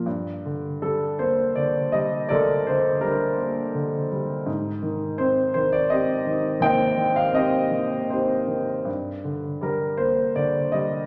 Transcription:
<<
  \new Staff \with { instrumentName = "Upright piano" } { \time 3/4 \key g \minor \tempo 4 = 82 << { r4 a'8 c''8 d''8 ees''8 | d''8 c''8 bes'4. r8 | r4 c''8 c''16 d''16 ees''4 | g''8. f''16 ees''4 c''8. r16 |
r4 bes'8 c''8 d''8 ees''8 | } \\ { r2. | <a' bes'>4 d'4. r8 | r2 <g' c''>4 | <c'' ees''>4 <g' c''>4 <ees' g'>4 |
r2. | } >> }
  \new Staff \with { instrumentName = "Upright piano" } { \clef bass \time 3/4 \key g \minor g,8 d8 g8 bes8 d8 g8 | d,8 d8 g8 bes8 d8 g8 | aes,8 ees8 c'8 ees8 c'8 ees8 | ees,8 ees8 c'8 ees8 c'8 ees8 |
g,8 d8 g8 bes8 d8 g8 | }
>>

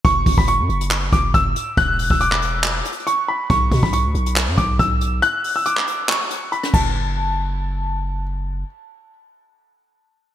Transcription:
<<
  \new Staff \with { instrumentName = "Grand piano" } { \time 4/4 \key fis \minor \tempo 4 = 139 cis'''8. b''16 cis'''4 r8 d'''8 e'''8 r8 | fis'''8. e'''16 d'''2 cis'''8 b''8 | cis'''8. b''16 cis'''4 r8 d'''8 e'''8 r8 | fis'''8. e'''16 d'''4 cis'''4 b''8 a''8~ |
a''2. r4 | r1 | }
  \new Staff \with { instrumentName = "808-style bass" } { \clef bass \time 4/4 \key fis \minor fis,,8 fis,,16 fis,,8 fis,16 fis,,4 fis,,8 fis,,8 r8 | e,,8. e,,4.~ e,,16 r4. | b,,8 b,16 b,,8 d,16 b,,8. fis,16 b,,8 b,,4 | r2. r8 fis,,8~ |
fis,,1 | r1 | }
  \new DrumStaff \with { instrumentName = "Drums" } \drummode { \time 4/4 <hh bd>8 <hho bd>16 bd16 hh8 hh16 hh16 <hc hh>8 <hh bd>8 <hh bd>8 hh8 | <hh bd>8 hho16 bd16 hh16 <hc ss>16 hh8 \tuplet 3/2 { <hc hh>16 r16 r16 hh16 hh16 hh16 } hh4 | <hh bd>8 <hho bd>16 bd16 hh8 hh16 hh16 <hc hh>8 <hh bd>8 <hh bd>8 hh8 | hh8 hho8 hh16 hc16 hh8 <hc hh>8 hh8 hh16 <hh ss>16 <cymc bd>8 |
r4 r4 r4 r4 | r4 r4 r4 r4 | }
>>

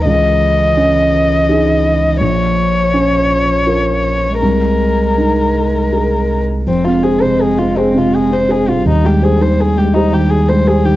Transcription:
<<
  \new Staff \with { instrumentName = "Violin" } { \time 3/4 \key aes \major \tempo 4 = 82 ees''2. | des''2. | bes'2~ bes'8. r16 | c'16 f'16 aes'16 c''16 aes'16 f'16 c'16 f'16 aes'16 c''16 aes'16 f'16 |
ees'16 g'16 aes'16 c''16 aes'16 g'16 ees'16 g'16 aes'16 c''16 aes'16 g'16 | }
  \new Staff \with { instrumentName = "Felt piano" } { \time 3/4 \key aes \major des,4 des'4 <ees' aes'>4 | bes,,4 des'4 <f' bes'>4 | c,4 ees'4 <aes' bes'>4 | f,16 c'16 <aes' c''>16 c8 c'16 <aes' c''>16 c8 c'16 <aes' c''>16 c16 |
ees,16 aes16 <g' c''>16 ees8 aes16 <g' c''>16 ees8 aes16 <g' c''>16 ees16 | }
  \new Staff \with { instrumentName = "Cello" } { \clef bass \time 3/4 \key aes \major fes2. | f2. | aes2~ aes8 r8 | aes2. |
g2. | }
  \new Staff \with { instrumentName = "Sub bass" } { \clef bass \time 3/4 \key aes \major des,2. | bes,,2. | c,2. | f,,2. |
ees,2. | }
>>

